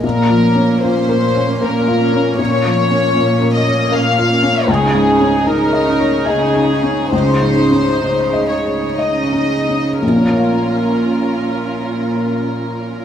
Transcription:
<<
  \new Staff \with { instrumentName = "Violin section" } { \time 3/4 \key bes \minor \tempo 4 = 74 bes'4 c''4 bes'4 | des''4. ees''8 f''4 | aes'4 bes'4 aes'4 | c''4. des''8 ees''4 |
bes'2. | }
  \new Staff \with { instrumentName = "Felt piano" } { \time 3/4 \key bes \minor \tuplet 3/2 { bes,8 f8 des'8 f'8 bes'8 des''8 bes'8 f'8 des'8 } | \tuplet 3/2 { bes,8 f8 des'8 f'8 bes'8 des''8 bes'8 f'8 des'8 } | \tuplet 3/2 { des,8 aes,8 des'8 ees'8 ees''8 des''8 ees''8 ees'8 des'8 } | \tuplet 3/2 { des,8 aes,8 des'8 ees'8 ees''8 des''8 ees''8 ees'8 des'8 } |
<bes,, bes, des' f' des'' f''>2. | }
  \new Staff \with { instrumentName = "Viola section" } { \time 3/4 \key bes \minor r8 <bes des'>4 <bes des'>4 <bes des'>8~ | <bes des'>8 <bes des'>4 <bes des'>4 <bes des'>8 | ees'8 ees'4 ees'4 ees'8~ | ees'8 ees'4 ees'4 ees'8 |
<des' f'>2. | }
  \new Staff \with { instrumentName = "Cello section" } { \clef bass \time 3/4 \key bes \minor bes,4 bes,4 bes,4 | bes,4 bes,4 bes,4 | des4 des4 des4 | des4 des4 des4 |
bes,2. | }
>>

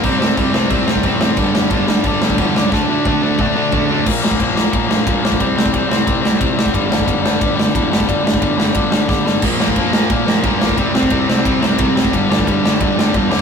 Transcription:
<<
  \new Staff \with { instrumentName = "Distorted electric guitar" } { \clef bass \time 4/4 \key c \lydian \tempo 4 = 179 <c g c'>8 <c g c'>8 <c g c'>8 <c g c'>8 <c g c'>8 <c g c'>8 <c g c'>8 <c g c'>8 | <g, d g>8 <g, d g>8 <g, d g>8 <g, d g>8 <g, d g>8 <g, d g>8 <g, d g>8 <g, d g>8 | <d a d'>8 <d a d'>8 <d a d'>8 <d a d'>8 <d a d'>8 <d a d'>8 <d a d'>8 <d a d'>8 | r1 |
r1 | r1 | r1 | <bes, f bes>8 <bes, f bes>8 <bes, f bes>8 <bes, f bes>8 <bes, f bes>8 <bes, f bes>8 <bes, f bes>8 <bes, f bes>8 |
<c g c'>8 <c g c'>8 <c g c'>8 <c g c'>8 <c g c'>8 <c g c'>8 <c g c'>8 <c g c'>8 | <g, d g>8 <g, d g>8 <g, d g>8 <g, d g>8 <g, d g>8 <g, d g>8 <g, d g>8 <g, d g>8 | }
  \new Staff \with { instrumentName = "Distorted electric guitar" } { \clef bass \time 4/4 \key c \lydian <c g c'>8 <c g c'>8 <c g c'>8 <c g c'>8 <c g c'>8 <c g c'>8 <c g c'>8 <c g c'>8 | <g, d g>8 <g, d g>8 <g, d g>8 <g, d g>8 <g, d g>8 <g, d g>8 <g, d g>8 <g, d g>8 | <d a d'>8 <d a d'>8 <d a d'>8 <d a d'>8 <d a d'>8 <d a d'>8 <d a d'>8 <d a d'>8 | <bes, f bes>8 <bes, f bes>8 <bes, f bes>8 <bes, f bes>8 <bes, f bes>8 <bes, f bes>8 <bes, f bes>8 <bes, f bes>8 |
<c g c'>8 <c g c'>8 <c g c'>8 <c g c'>8 <c g c'>8 <c g c'>8 <c g c'>8 <c g c'>8 | <g, d g>8 <g, d g>8 <g, d g>8 <g, d g>8 <g, d g>8 <g, d g>8 <g, d g>8 <g, d g>8 | <g, d g>8 <g, d g>8 <g, d g>8 <g, d g>8 <g, d g>8 <g, d g>8 <g, d g>8 <g, d g>8 | <bes, f bes>8 <bes, f bes>8 <bes, f bes>8 <bes, f bes>8 <bes, f bes>8 <bes, f bes>8 <bes, f bes>8 <bes, f bes>8 |
<c g c'>8 <c g c'>8 <c g c'>8 <c g c'>8 <c g c'>8 <c g c'>8 <c g c'>8 <c g c'>8 | <g, d g>8 <g, d g>8 <g, d g>8 <g, d g>8 <g, d g>8 <g, d g>8 <g, d g>8 <g, d g>8 | }
  \new Staff \with { instrumentName = "Picked electric bass" } { \clef bass \time 4/4 \key c \lydian c,8 c,8 c,8 c,8 c,8 c,8 a,,4 | g,,8 g,,8 g,,4 g,,8 g,,8 e,8 cis,8 | d,8 d,8 d,8 d,8 d,8 d,8 d,4 | bes,,8 bes,,8 bes,,4 bes,,8 bes,,8 g,8 bes,,8 |
c,8 c,8 c,8 c,8 c,8 c,8 c,4 | g,,8 g,,8 g,,4 g,,8 g,,8 e,8 g,,8 | g,,8 g,,8 g,,8 g,,8 g,,8 g,,8 g,,4 | bes,,8 bes,,8 bes,,4 bes,,8 bes,,8 g,8 bes,,8 |
c,8 c,8 c,8 c,8 c,8 c,8 c,4 | g,,8 g,,8 g,,4 g,,8 g,,8 e,8 cis,8 | }
  \new DrumStaff \with { instrumentName = "Drums" } \drummode { \time 4/4 <cymc bd>8 sn8 <cymc bd>8 sn8 <cymc bd>8 sn16 bd16 <cymc bd>8 sn8 | <cymc bd>8 sn8 <cymc bd>8 sn8 <cymc bd>8 sn16 bd16 <cymc bd>8 sn8 | <bd sn>4 <bd tommh>8 tommh8 <bd toml>4 <bd tomfh>8 tomfh8 | <cymc bd>8 sn16 bd16 <bd cymr>8 sn8 <bd cymr>8 sn8 <bd cymr>8 sn16 bd16 |
<bd cymr>8 sn16 bd16 <bd cymr>8 sn8 <bd cymr>8 sn8 <bd cymr>8 sn16 bd16 | <bd cymr>8 sn16 bd16 <bd cymr>8 sn8 <bd cymr>8 sn8 <bd cymr>8 sn16 bd16 | <bd cymr>8 sn16 bd16 <bd cymr>8 sn8 <bd cymr>8 sn8 <bd sn>8 sn8 | <cymc bd>8 sn16 bd16 <bd cymr>8 sn8 <bd cymr>8 sn8 <bd cymr>8 sn16 bd16 |
<bd cymr>8 sn16 bd16 <bd cymr>8 sn8 <bd cymr>8 sn8 <bd cymr>8 sn16 bd16 | <bd cymr>8 sn16 bd16 <bd cymr>8 sn8 <bd cymr>8 sn8 <bd cymr>8 sn8 | }
>>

